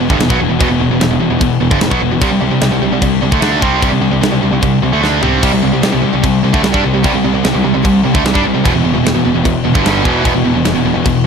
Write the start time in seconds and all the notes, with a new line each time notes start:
Already playing: E3 B3 F#4
0.00 E2 B2
0.10 G1 G2 D3, kick
0.19 E1 E2 B2, snare, crash
0.30 B1 B2 F#3, kick
0.39 E1 E2 B2
0.49 E1 E2 B2
0.59 E1 E2 B2, kick, crash
0.70 E1 E2 B2
0.79 E1 E2 B2
0.90 E1 E2 B2
1.00 E1 E2 B2, snare, crash
1.10 E1 E2 B2
1.20 E1 E2 B2
1.30 E1 E2 B2
1.39 E1 E2 B2, kick, crash
1.60 E1 E2 B2
1.71 G1 G2 D3, kick
1.81 E1 E2 B2, snare, crash
1.90 B1 B2 F#3, kick
2.00 E1 E2 B2
2.11 E1 E2 B2
2.21 C2 C3 G3 D4, kick, crash
2.31 C2 C3 G3
2.41 C2 C3 G3
2.51 C2 C3 G3
2.61 C2 C3 G3, snare, crash
2.71 C2 C3 G3
2.81 C2 C3 G3
2.91 C2 C3 G3
3.02 C2 C3 G3, kick, crash
3.22 C2 C3 G3
3.31 D2 D3 A3, kick
3.41 D2 D3 A3 D4, snare, crash
3.62 C2 C3 G3 C4, kick
3.82 C2 C3 G3, kick, crash
3.92 C2 C3 G3
4.01 C2 C3 G3
4.12 C2 C3 G3
4.21 C2 C3 G3, snare, crash
4.31 C2 C3 G3
4.42 C2 C3 G3
4.52 C2 C3 G3
4.62 C2 C3 G3, kick, crash
4.82 C2 C3 G3
4.92 D2 D3 A3
5.01 D2 D3 A3 D4, snare
5.22 C2 C3 G3 C4, floor tom
5.43 C2 C3 G3 C4, kick, splash, crash
5.53 C2 C3 G3
5.62 C2 C3 G3
5.72 C2 C3 G3
5.82 C2 C3 G3, snare, crash
5.92 C2 C3 G3
6.02 C2 C3 G3
6.13 C2 C3 G3
6.23 C2 C3 G3, kick, crash
6.43 C2 C3 G3
6.53 D2 D3 A3, kick
6.63 C2 C3 G3, snare, crash
6.72 G2 G3 D4, kick
6.83 C2 C3 G3
6.94 C2 C3 G3
7.03 C2 C3 G3, kick, crash
7.13 C2 C3 G3
7.24 C2 C3 G3
7.33 C2 C3 G3
7.43 C2 C3 G3, snare, crash
7.54 C2 C3 G3
7.63 C2 C3 G3
7.74 C2 C3 G3
7.83 C2 C3 G3, kick, crash
8.04 C2 C3 G3
8.14 D2 D3 A3, kick
8.24 C2 C3 G3, snare, crash
8.34 G2 G3 D4, kick
8.44 C2 C3 G3
8.54 C2 C3 G3
8.64 E1 E2 B2 E3 B3 F#4, kick, crash
8.74 E1 E2 B2
8.83 E1 E2 B2
8.93 E1 E2 B2
9.04 E1 E2 B2, snare, crash
9.14 E1 E2 B2
9.25 E1 E2 B2
9.35 E1 E2 B2
9.44 E1 E2 B2, kick, crash
9.64 E1 E2 B2
9.74 G1 G2 D3, kick
9.83 G1 G2 D3 G3, snare, crash
10.04 E1 E2 B2 E3, kick
10.24 E1 E2 B2, kick, crash
10.34 E1 E2 B2
10.44 E1 E2 B2
10.53 E1 E2 B2
10.64 E1 E2 B2, snare, crash
10.74 E1 E2 B2
10.84 E1 E2 B2
10.93 E1 E2 B2
11.04 E1 E2 B2, kick, crash